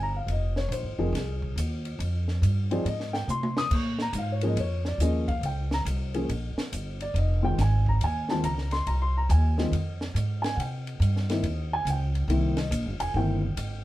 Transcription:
Already playing: G1
0.03 A#5
0.16 F5
0.27 F1, ride
0.31 D#5
0.56 C#5, snare
0.69 A#1 C5, hi-hat pedal, ride
0.83 G#1
0.98 F1 F3 C4 D#4 G#4 A#4
1.12 C2, snare, ride
1.18 G#4
1.42 kick
1.56 D#2, hi-hat pedal, ride
1.85 ride
1.99 F2, ride
2.28 snare
2.42 G2, hi-hat pedal, ride
2.71 F3 C4 D#4 G#4 D5, ride
2.85 G#2 D#5, ride
3.00 snare
3.13 G5, snare
3.28 C3 C6, hi-hat pedal, high tom
3.43 high tom
3.57 D#6, snare
3.71 A#2, kick, crash
3.75 C#6
3.99 A#5, snare
4.13 G#2, hi-hat pedal, ride
4.18 F5
4.32 C#5
4.41 F3 A#3 C#4 G#4, ride
4.47 D#5
4.56 F2, ride
4.60 C#5
4.85 D5, snare
4.98 D#2 F3 A#3 C#4 G#4 D#5, hi-hat pedal, ride
5.28 F5, kick, ride
5.41 C#2, ride
5.46 G5
5.71 A#5, snare
5.85 C2, hi-hat pedal, ride
6.14 F3 A#3 C#4 G#4, ride
6.29 A#1, ride
6.56 muted upright bass stroke, snare
6.72 G1, hi-hat pedal, ride
7.00 D5, ride
7.14 F1, ride
7.18 D#5
7.42 D#3 G#3 C4 F4 G5
7.58 G#1 G#5, snare, hi-hat pedal, ride
7.86 A#5, kick
8.01 D#2 G#5, ride
8.29 D#3 G#3 C4 F4 A5, snare
8.44 C#2 A#5, hi-hat pedal, ride
8.58 snare
8.71 C6, snare, ride
8.87 C2 A#5, ride
9.02 C6
9.17 A#5
9.29 D#2 G#5, hi-hat pedal, ride
9.58 D#3 G#3 C4 F4 D#5, snare
9.71 F2, ride
10.01 snare
10.14 G#2, hi-hat pedal, ride
10.42 G#5, snare, ride
10.55 C3 F#5
10.60 G5, ride
10.87 ride
11.00 G2, hi-hat pedal, ride
11.17 snare
11.30 D#3 A#3 C4 E4 D#5, snare, ride
11.43 D#2, ride
11.73 G#5
11.85 C#2, hi-hat pedal, ride
11.90 G5
12.15 ride
12.28 C2 D#3 A#3 C4 E4, ride
12.57 D#5, snare, ride
12.71 A#1, hi-hat pedal, ride
12.86 G1
13.00 E1 G#5, ride
13.14 G1 D#3 A#3 C4 E4 G5
13.57 G#1, hi-hat pedal, ride

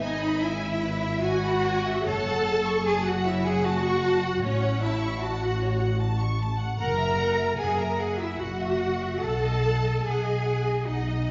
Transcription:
Already playing: G#1
0.00 D#4 D#5 G#5
0.22 B5
0.41 E4 E5 G#5
0.64 E5
0.84 B4
1.03 E5
1.22 F#4 G#5
1.26 F#5
1.45 B5
1.64 G#5
1.86 E5
2.05 F#1 A4 C#5 A5
2.26 F#5
2.45 A5
2.65 C#6
2.84 G#4 G#5 A5
3.04 F#4 F#5
3.24 E4 C#5 E5
3.44 G#4 F#5 G#5
3.65 F#4 F#5 A5
3.83 C#6
4.03 A5
4.23 F#5
4.43 A1 C#4 C#5
4.61 F#5
4.82 E4 E5 A5
5.00 C#6
5.20 F#4 F#5 A5
5.39 F#5
5.60 C#5
5.79 F#5
6.00 A5
6.20 C#6
6.40 A5
6.60 F#5
6.78 F#1 A#4 F#5 A#5
6.98 E5
7.17 F#5
7.37 E5
7.55 F#5
7.59 F#1 G#4 G#5
7.77 A#4 E5 A#5
7.99 G#4 F#5 G#5
8.18 E4 E5
8.23 E5
8.38 F#1 F#4 F#5
8.59 E5
8.81 F#5
9.01 E5
9.21 B1 A4 F#5 A5
9.43 D#5
9.64 F#5
9.84 D#5
10.04 B1 G#4 F#5 G#5
10.24 D#5
10.45 F#5
10.65 D#5
10.86 B1 D#4 D#5 F#5
11.08 D#5
11.26 F#5

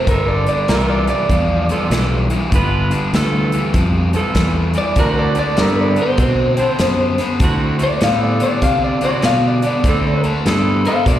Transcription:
0.07 G1 G2 D3 B3 F4 A4 A#4, kick, closed hi-hat
0.28 D5
0.46 G2 D3 D5, closed hi-hat
0.68 C2 G2 E3 B3 F4 A4 A#4, snare, closed hi-hat
0.90 D5
1.07 G2 E3 D5, closed hi-hat
1.29 E2 G2 F3, kick, closed hi-hat
1.68 G2 F3 B3 F4 A4, closed hi-hat
1.90 B1 G2 E3, snare, closed hi-hat
2.30 G2 E3, closed hi-hat
2.51 G1 G2 D3 B3 F4 B4, kick, closed hi-hat
2.91 G2 D3, closed hi-hat
3.13 D2 G2 E3 B3 F4 A4, snare, closed hi-hat
3.52 G2 E3, closed hi-hat
3.74 F2 G2 F3, kick, closed hi-hat
4.13 G2 F3 B3 F4 A4, closed hi-hat
4.35 E2 G2 E3, kick, snare, closed hi-hat
4.74 G2 E3, closed hi-hat
4.78 D5
4.96 D2 D3 A3 C4 E4 F#4 A#4, kick, closed hi-hat
5.19 D5
5.35 D3 A3, closed hi-hat
5.39 D5
5.57 G2 D3 B3 C4 E4 A4 A#4, snare, closed hi-hat
5.81 D5
5.96 D3 B3, closed hi-hat
6.02 C5
6.18 B2 D3 C4, kick, closed hi-hat
6.57 D3 C4 E4 A4 C5, closed hi-hat
6.79 F#2 D3 B3, snare, closed hi-hat
7.18 D3 B3, snare, closed hi-hat
7.40 D2 D3 A3 C4 E4 F#4, kick, closed hi-hat
7.79 D3 A3, closed hi-hat
7.83 D5
8.00 A2 D3 B3 C4 E4 A4 F5, snare, closed hi-hat
8.23 D5
8.39 D3 B3 D5, closed hi-hat
8.61 C3 D3 C4 F5, kick, closed hi-hat
8.84 D5
9.01 D3 C4 E4 F#4, closed hi-hat
9.05 D5
9.22 B2 D3 B3 F5, snare, closed hi-hat
9.48 D5
9.62 D3 B3, closed hi-hat
9.67 D5
9.84 D2 D3 A3 C4 E4 A4, kick, closed hi-hat
10.24 D3 A3, closed hi-hat
10.44 G2 D3 B3 C4 E4 A4, snare, closed hi-hat
10.85 D3 B3 C5 F5, closed hi-hat
11.05 B2 D3 C4 D5, kick, closed hi-hat

